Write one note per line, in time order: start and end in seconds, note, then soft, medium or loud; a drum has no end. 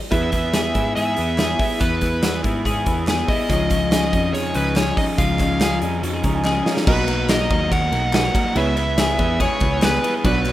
0.11 0.72 E2 loud
0.11 0.33 E3 medium
0.11 0.33 B3 medium
0.11 3.45 E4 medium
0.11 0.33 E4 medium
0.11 3.46 G#4 medium
0.11 0.31 G#4 medium
0.11 3.46 B4 medium
0.11 0.92 E5 loud
0.11 kick loud
0.11 closed hi-hat medium
0.32 0.53 B3 soft
0.32 0.54 E4 medium
0.32 0.54 G#4 medium
0.32 kick medium
0.32 clap medium
0.32 closed hi-hat medium
0.53 0.75 E3 medium
0.53 0.75 B3 medium
0.53 0.75 E4 medium
0.53 0.73 G#4 medium
0.53 snare medium
0.53 clap medium
0.53 closed hi-hat medium
0.74 0.93 G#2 medium
0.74 0.95 B3 soft
0.74 0.96 E4 soft
0.74 0.96 G#4 medium
0.74 kick medium
0.74 closed hi-hat medium
0.96 1.15 G#2 medium
0.96 1.17 E3 medium
0.96 1.18 B3 medium
0.96 1.17 E4 medium
0.96 1.15 G#4 medium
0.96 1.83 E5 loud
0.96 closed hi-hat medium
1.16 1.54 E2 medium
1.16 1.37 B3 soft
1.16 1.39 E4 soft
1.16 1.38 G#4 soft
1.16 closed hi-hat medium
1.37 1.59 E3 medium
1.37 1.60 B3 medium
1.37 1.59 E4 medium
1.37 1.57 G#4 medium
1.37 snare loud
1.37 clap medium
1.37 closed hi-hat medium
1.58 1.80 B3 medium
1.58 1.81 E4 medium
1.58 1.80 G#4 medium
1.58 kick medium
1.58 open hi-hat medium
1.80 2.41 E2 medium
1.80 2.02 E3 medium
1.80 2.02 B3 medium
1.80 2.01 E4 medium
1.80 2.00 G#4 medium
1.80 2.40 B4 medium
1.80 kick loud
1.80 closed hi-hat medium
2.01 2.22 B3 soft
2.01 2.23 E4 medium
2.01 2.23 G#4 medium
2.01 kick medium
2.01 clap medium
2.01 closed hi-hat medium
2.22 2.44 E3 medium
2.22 2.44 B3 medium
2.22 2.44 E4 medium
2.22 2.34 F#4 medium
2.22 2.42 G#4 medium
2.22 snare loud
2.22 clap loud
2.22 closed hi-hat loud
2.34 2.64 G#4 medium
2.43 2.62 G#2 medium
2.43 2.64 B3 soft
2.43 2.65 E4 medium
2.43 2.65 G#4 medium
2.43 kick medium
2.43 closed hi-hat medium
2.64 2.83 G#2 medium
2.64 2.86 E3 medium
2.64 2.86 B3 medium
2.64 2.86 E4 medium
2.64 2.84 G#4 loud
2.64 kick medium
2.64 closed hi-hat medium
2.85 3.23 E2 medium
2.85 3.07 B3 soft
2.85 3.08 E4 soft
2.85 3.07 G#4 medium
2.85 kick medium
2.85 closed hi-hat medium
3.07 3.28 E3 medium
3.07 3.29 B3 medium
3.07 3.29 E4 medium
3.07 3.27 G#4 medium
3.07 snare loud
3.07 clap medium
3.07 closed hi-hat medium
3.28 3.50 B3 soft
3.28 3.50 E4 soft
3.28 3.49 G#4 medium
3.28 4.33 D#5 medium
3.28 kick loud
3.28 open hi-hat medium
3.49 4.10 C#2 loud
3.49 3.70 C#3 medium
3.49 3.71 F3 medium
3.49 3.71 C#4 medium
3.49 6.62 D#4 medium
3.49 3.71 D#4 medium
3.49 6.62 F4 medium
3.49 3.69 G#4 medium
3.49 6.62 C#5 medium
3.49 kick medium
3.49 closed hi-hat medium
3.70 3.91 C#4 medium
3.70 3.92 D#4 medium
3.70 3.92 G#4 medium
3.70 kick medium
3.70 clap medium
3.70 closed hi-hat medium
3.91 4.13 F3 medium
3.91 4.13 C#4 medium
3.91 4.13 D#4 medium
3.91 4.11 G#4 medium
3.91 snare loud
3.91 clap medium
3.91 closed hi-hat loud
4.12 4.31 F2 medium
4.12 4.33 C#4 soft
4.12 4.34 D#4 soft
4.12 4.34 G#4 medium
4.12 kick medium
4.12 closed hi-hat medium
4.33 4.52 F2 medium
4.33 4.55 C#3 medium
4.33 4.55 F3 medium
4.33 4.55 C#4 medium
4.33 4.56 D#4 medium
4.33 4.53 G#4 medium
4.33 4.56 C#5 loud
4.33 closed hi-hat medium
4.54 4.91 C#2 loud
4.54 4.76 C#4 soft
4.54 4.77 D#4 soft
4.54 4.76 G#4 medium
4.54 4.77 B4 loud
4.54 closed hi-hat medium
4.76 4.97 F3 medium
4.76 4.98 C#4 medium
4.76 4.98 D#4 medium
4.76 4.95 G#4 medium
4.76 4.97 C#5 medium
4.76 snare loud
4.76 clap medium
4.76 closed hi-hat medium
4.97 5.18 C#4 soft
4.97 5.19 D#4 medium
4.97 5.18 G#4 medium
4.97 5.03 D#5 loud
4.97 kick loud
4.97 open hi-hat medium
5.18 5.79 C#2 loud
5.18 5.40 C#3 medium
5.18 5.40 F3 medium
5.18 5.40 C#4 medium
5.18 5.40 D#4 medium
5.18 5.38 G#4 medium
5.18 5.78 F5 loud
5.18 kick loud
5.18 closed hi-hat medium
5.39 5.60 C#4 medium
5.39 5.61 D#4 medium
5.39 5.60 G#4 soft
5.39 kick medium
5.39 clap medium
5.39 closed hi-hat medium
5.60 5.82 F3 medium
5.60 5.82 C#4 medium
5.60 5.82 D#4 medium
5.60 5.80 G#4 medium
5.60 snare loud
5.60 clap medium
5.60 closed hi-hat loud
5.81 6.00 F2 medium
5.81 6.02 C#4 soft
5.81 6.03 D#4 medium
5.81 6.03 G#4 medium
5.81 closed hi-hat medium
6.02 6.21 F2 medium
6.02 6.24 C#3 medium
6.02 6.24 F3 medium
6.02 6.24 C#4 medium
6.02 6.25 D#4 medium
6.02 6.14 F#4 medium
6.02 6.22 G#4 loud
6.02 closed hi-hat medium
6.14 6.44 G#4 medium
6.23 6.60 C#2 medium
6.23 6.44 C#4 soft
6.23 6.45 D#4 medium
6.23 6.45 G#4 medium
6.23 6.34 A#5 medium
6.23 kick medium
6.23 closed hi-hat medium
6.35 6.45 G#5 medium
6.44 6.66 F3 medium
6.44 6.66 C#4 medium
6.44 6.67 D#4 medium
6.44 6.65 G#4 medium
6.44 6.84 D#5 medium
6.44 snare medium
6.44 clap loud
6.66 6.89 C#4 soft
6.66 6.87 D#4 medium
6.66 6.88 D#4 medium
6.66 6.87 F4 medium
6.66 6.87 G#4 medium
6.66 6.87 C#5 medium
6.66 snare medium
6.77 snare medium
6.86 7.47 B1 loud
6.86 7.08 B2 medium
6.86 7.09 F#3 medium
6.86 7.09 A#3 medium
6.86 8.11 B3 medium
6.86 7.08 D#4 medium
6.86 8.11 F#4 medium
6.86 7.06 F#4 medium
6.86 7.31 B4 medium
6.86 8.11 D#5 medium
6.86 8.11 A#5 medium
6.86 kick loud
6.86 crash loud
7.07 7.29 A#3 medium
7.07 7.30 D#4 medium
7.07 7.29 F#4 medium
7.07 clap medium
7.07 ride medium
7.29 7.50 F#3 medium
7.29 7.51 A#3 medium
7.29 7.50 D#4 medium
7.29 7.49 F#4 medium
7.29 7.71 A#4 medium
7.29 7.69 D#5 loud
7.29 snare loud
7.29 clap loud
7.29 ride medium
7.50 7.68 D#2 medium
7.50 7.71 A#3 medium
7.50 7.72 D#4 medium
7.50 7.71 F#4 medium
7.50 kick medium
7.50 ride medium
7.71 7.90 D#2 medium
7.71 7.93 B2 medium
7.71 7.93 F#3 medium
7.71 7.93 A#3 medium
7.71 7.92 D#4 medium
7.71 7.91 F#4 loud
7.71 8.14 A#4 medium
7.71 8.14 F#5 loud
7.71 kick medium
7.71 ride medium
7.92 8.28 B1 loud
7.92 8.13 A#3 soft
7.92 8.14 D#4 soft
7.92 8.13 F#4 soft
7.92 ride medium
8.12 8.34 F#3 medium
8.12 8.35 A#3 medium
8.12 8.34 D#4 medium
8.12 8.56 F#4 soft
8.12 8.33 F#4 medium
8.12 8.24 G#4 medium
8.12 8.56 A#4 soft
8.12 8.55 B4 soft
8.12 8.56 D#5 medium
8.12 8.58 F#5 loud
8.12 snare loud
8.12 clap loud
8.12 ride medium
8.24 8.60 A#4 medium
8.34 8.56 A#3 soft
8.34 8.56 D#4 medium
8.34 8.55 F#4 medium
8.34 kick loud
8.34 ride medium
8.55 9.16 C#2 loud
8.55 8.77 C#3 medium
8.55 8.77 G#3 medium
8.55 8.77 B3 medium
8.55 10.21 E4 medium
8.55 8.77 E4 medium
8.55 10.21 G#4 medium
8.55 8.75 G#4 medium
8.55 10.21 B4 medium
8.55 10.21 C#5 medium
8.55 9.41 E5 loud
8.55 ride medium
8.76 8.98 B3 soft
8.76 8.99 E4 medium
8.76 8.98 G#4 medium
8.76 clap medium
8.76 ride medium
8.98 9.19 G#3 medium
8.98 9.20 B3 medium
8.98 9.19 E4 medium
8.98 9.17 G#4 medium
8.98 snare loud
8.98 clap loud
8.98 ride medium
9.18 9.46 E2 medium
9.18 9.40 B3 medium
9.18 9.40 E4 medium
9.18 9.40 G#4 medium
9.18 kick medium
9.18 ride medium
9.40 9.61 C#3 medium
9.40 9.61 G#3 medium
9.40 9.62 B3 loud
9.40 9.61 E4 medium
9.40 9.59 G#4 loud
9.40 9.84 C#5 loud
9.40 kick medium
9.40 ride medium
9.60 9.97 C#2 loud
9.60 9.81 B3 soft
9.60 9.82 E4 medium
9.60 9.82 G#4 soft
9.60 kick loud
9.60 ride medium
9.81 10.03 G#3 medium
9.81 10.03 B3 medium
9.81 10.03 E4 medium
9.81 10.01 G#4 medium
9.81 10.12 B4 medium
9.81 snare loud
9.81 clap loud
9.81 ride medium
10.02 10.23 B3 soft
10.02 10.25 E4 medium
10.02 10.24 G#4 medium
10.02 ride medium
10.24 10.52 B1 loud
10.24 10.45 B2 medium
10.24 10.46 F#3 medium
10.24 10.46 B3 medium
10.24 10.52 D4 medium
10.24 10.46 D4 medium
10.24 10.52 F#4 medium
10.24 10.45 F#4 medium
10.24 10.52 B4 medium
10.24 10.52 B4 loud
10.24 10.43 C#5 medium
10.24 10.52 D5 medium
10.24 kick loud
10.24 ride medium
10.45 10.52 F#3 medium
10.45 10.52 B3 soft
10.45 10.52 D4 medium
10.45 10.52 F#4 medium
10.45 10.52 C#5 medium
10.45 clap medium
10.45 ride medium